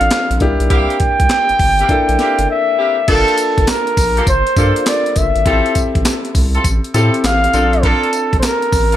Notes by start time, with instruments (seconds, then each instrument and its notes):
Already playing: grand piano C4 D4 F4 A4 A5, muted trumpet F5
0.01 analog synth bass A1, closed hi-hat
0.11 snare, clap, closed hi-hat
0.31 analog synth bass A#1, closed hi-hat
0.40 analog synth bass C2, grand piano A#3 D4 E4 G4, kick, closed hi-hat
0.60 analog synth bass B1, closed hi-hat
0.70 analog synth bass C2, horn section A#3 C4 E4 G4, muted trumpet G5, kick, closed hi-hat
0.90 closed hi-hat
1.00 kick, closed hi-hat
1.20 analog synth bass C2, kick, closed hi-hat
1.29 snare, clap, closed hi-hat
1.49 analog synth bass G1, closed hi-hat
1.59 analog synth bass G1, kick, open hi-hat
1.79 horn section A#3 C4 E4 G4, closed hi-hat
1.89 grand piano A#3 D4 E4 A4, kick, closed hi-hat
2.09 analog synth bass A#1, closed hi-hat
2.19 horn section A#3 C4 E4 G4, snare, closed hi-hat
2.39 analog synth bass G1, closed hi-hat
2.50 muted trumpet E5
2.78 horn section A#3 C4 E4 G4
3.08 analog synth bass G1, horn section A#3 F4 G4 A4, grand piano A#3 D4 F4 A4, muted trumpet A4, kick, closed hi-hat, crash
3.28 closed hi-hat
3.38 closed hi-hat, tambourine
3.58 analog synth bass G1, kick, closed hi-hat
3.67 muted trumpet A#4, snare, clap, closed hi-hat, tambourine
3.87 closed hi-hat
3.97 analog synth bass A#1, kick, open hi-hat, tambourine
4.17 horn section A#3 F4 G4 A4, closed hi-hat
4.27 analog synth bass G1, muted trumpet C5, kick, closed hi-hat, tambourine
4.47 closed hi-hat
4.56 analog synth bass G2, horn section A#3 F4 G4 A4, grand piano A#3 D4 F4 A4, kick, closed hi-hat, tambourine
4.76 closed hi-hat
4.86 muted trumpet D5, snare, clap, closed hi-hat, tambourine
5.06 closed hi-hat
5.16 analog synth bass G1, muted trumpet E5, kick, closed hi-hat, tambourine
5.36 analog synth bass G#1, closed hi-hat
5.45 analog synth bass A1, horn section C4 E4 F4 A4, grand piano C4 E4 G4 A4, kick, closed hi-hat
5.66 closed hi-hat
5.75 kick, closed hi-hat, tambourine
5.95 analog synth bass A1, kick, closed hi-hat
6.05 snare, clap, closed hi-hat, tambourine
6.25 closed hi-hat
6.35 analog synth bass C2, kick, open hi-hat, tambourine
6.54 horn section C4 E4 F4 A4, closed hi-hat
6.64 analog synth bass A1, kick, closed hi-hat, tambourine
6.84 closed hi-hat
6.94 analog synth bass A2, horn section C4 E4 F4 A4, grand piano C4 E4 G4 A4, closed hi-hat, tambourine
7.14 closed hi-hat
7.24 analog synth bass A1, muted trumpet F5, snare, clap, closed hi-hat, tambourine
7.44 closed hi-hat
7.53 analog synth bass A#1, horn section A#3 D4 F4 A4, grand piano C4 D4 F4 A4, closed hi-hat, tambourine
7.73 closed hi-hat
7.83 horn section A#3 D4 F4 A4, muted trumpet A4, kick, closed hi-hat
8.03 closed hi-hat
8.13 closed hi-hat, tambourine
8.33 analog synth bass A1, kick, closed hi-hat
8.40 muted trumpet C5, snare, clap, closed hi-hat, tambourine
8.45 muted trumpet A#4
8.62 closed hi-hat
8.72 analog synth bass A1, kick, open hi-hat, tambourine
8.92 horn section A#3 D4 F4 A4, closed hi-hat